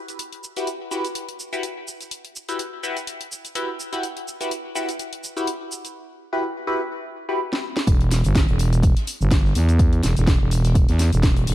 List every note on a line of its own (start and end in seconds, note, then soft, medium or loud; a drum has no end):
0.08 closed hi-hat soft
0.08 shaker soft
0.19 closed hi-hat medium
0.19 shaker soft
0.33 closed hi-hat soft
0.44 shaker medium
0.56 0.68 E4 medium
0.56 0.68 F#4 medium
0.56 0.68 G4 medium
0.56 0.68 B4 medium
0.56 closed hi-hat soft
0.56 shaker soft
0.67 closed hi-hat medium
0.67 shaker soft
0.91 1.05 E4 medium
0.91 1.05 F#4 medium
0.91 1.05 G4 medium
0.91 1.05 B4 medium
0.91 shaker medium
1.05 closed hi-hat soft
1.05 shaker soft
1.15 closed hi-hat medium
1.15 shaker soft
1.29 closed hi-hat soft
1.40 shaker medium
1.53 1.64 E4 medium
1.53 1.64 F#4 medium
1.53 1.64 G4 medium
1.53 1.64 B4 medium
1.53 shaker soft
1.63 closed hi-hat medium
1.63 shaker soft
1.88 shaker medium
2.01 closed hi-hat soft
2.01 shaker soft
2.11 closed hi-hat medium
2.11 shaker soft
2.25 closed hi-hat soft
2.36 shaker medium
2.49 2.60 E4 medium
2.49 2.60 F#4 medium
2.49 2.60 G4 medium
2.49 2.60 B4 medium
2.49 closed hi-hat soft
2.49 shaker soft
2.59 closed hi-hat medium
2.59 shaker soft
2.83 2.97 E4 medium
2.83 2.97 F#4 medium
2.83 2.97 G4 medium
2.83 2.97 B4 loud
2.83 shaker medium
2.97 closed hi-hat soft
2.97 shaker soft
3.07 closed hi-hat medium
3.07 shaker soft
3.21 closed hi-hat soft
3.32 shaker medium
3.45 closed hi-hat soft
3.45 shaker soft
3.55 3.69 E4 medium
3.55 3.69 F#4 medium
3.55 3.69 G4 medium
3.55 3.69 B4 loud
3.55 closed hi-hat medium
3.55 shaker soft
3.80 shaker medium
3.93 4.04 E4 medium
3.93 4.04 F#4 medium
3.93 4.04 G4 medium
3.93 4.04 B4 loud
3.93 closed hi-hat soft
3.93 shaker soft
4.03 closed hi-hat medium
4.03 shaker soft
4.17 closed hi-hat soft
4.28 shaker medium
4.41 4.52 E4 medium
4.41 4.52 F#4 medium
4.41 4.52 G4 medium
4.41 4.52 B4 medium
4.41 closed hi-hat soft
4.41 shaker soft
4.51 closed hi-hat medium
4.51 shaker soft
4.75 4.89 E4 medium
4.75 4.89 F#4 medium
4.75 4.89 G4 medium
4.75 4.89 B4 medium
4.75 shaker medium
4.89 closed hi-hat soft
4.89 shaker soft
4.99 closed hi-hat medium
4.99 shaker soft
5.13 closed hi-hat soft
5.24 shaker medium
5.37 5.48 E4 medium
5.37 5.48 F#4 medium
5.37 5.48 G4 medium
5.37 5.48 B4 medium
5.37 shaker soft
5.47 closed hi-hat medium
5.47 shaker soft
5.72 shaker medium
5.85 closed hi-hat soft
5.85 shaker soft
6.33 6.44 E4 medium
6.33 6.44 F#4 medium
6.33 6.44 G4 medium
6.33 6.44 B4 medium
6.67 6.81 E4 medium
6.67 6.81 F#4 medium
6.67 6.81 G4 medium
6.67 6.81 B4 loud
7.29 7.40 E4 medium
7.29 7.40 F#4 medium
7.29 7.40 G4 medium
7.29 7.40 B4 medium
7.53 snare medium
7.77 snare medium
7.87 8.22 E1 loud
7.87 kick loud
7.87 closed hi-hat medium
7.87 tambourine medium
7.87 shaker soft
8.01 closed hi-hat soft
8.11 snare medium
8.11 open hi-hat loud
8.11 tambourine medium
8.11 shaker medium
8.24 8.46 G1 loud
8.24 closed hi-hat soft
8.24 shaker soft
8.35 kick loud
8.35 snare loud
8.35 closed hi-hat medium
8.35 tambourine medium
8.35 shaker soft
8.49 8.94 E1 loud
8.49 closed hi-hat soft
8.59 open hi-hat medium
8.59 tambourine medium
8.59 shaker medium
8.73 closed hi-hat medium
8.73 shaker soft
8.83 kick loud
8.83 closed hi-hat medium
8.83 tambourine medium
8.83 shaker soft
8.97 snare soft
8.97 closed hi-hat medium
9.07 open hi-hat loud
9.07 tambourine medium
9.07 shaker medium
9.21 9.54 G1 loud
9.21 shaker soft
9.31 kick loud
9.31 snare loud
9.31 closed hi-hat medium
9.31 tambourine medium
9.31 shaker soft
9.45 snare medium
9.55 10.02 E2 loud
9.55 open hi-hat medium
9.55 tambourine medium
9.55 shaker medium
9.69 closed hi-hat soft
9.69 shaker soft
9.79 kick loud
9.79 closed hi-hat medium
9.79 tambourine medium
9.79 shaker soft
9.93 closed hi-hat soft
10.03 10.14 E1 loud
10.03 snare medium
10.03 open hi-hat loud
10.03 tambourine medium
10.03 shaker medium
10.17 10.38 E1 loud
10.17 snare soft
10.17 closed hi-hat soft
10.17 shaker soft
10.27 kick loud
10.27 snare loud
10.27 closed hi-hat medium
10.27 tambourine medium
10.27 shaker soft
10.41 10.87 E1 loud
10.51 open hi-hat medium
10.51 tambourine medium
10.51 shaker medium
10.65 snare medium
10.65 closed hi-hat medium
10.65 shaker soft
10.75 kick loud
10.75 closed hi-hat medium
10.75 tambourine medium
10.75 shaker soft
10.89 11.10 E2 loud
10.89 snare medium
10.89 closed hi-hat medium
10.99 snare soft
10.99 snare medium
10.99 open hi-hat loud
10.99 tambourine medium
10.99 shaker medium
11.12 11.46 E1 loud
11.12 closed hi-hat soft
11.12 shaker soft
11.23 kick loud
11.23 snare loud
11.23 closed hi-hat medium
11.23 tambourine medium
11.23 shaker soft
11.36 closed hi-hat soft
11.47 11.55 E1 loud
11.47 open hi-hat medium
11.47 open hi-hat loud
11.47 shaker medium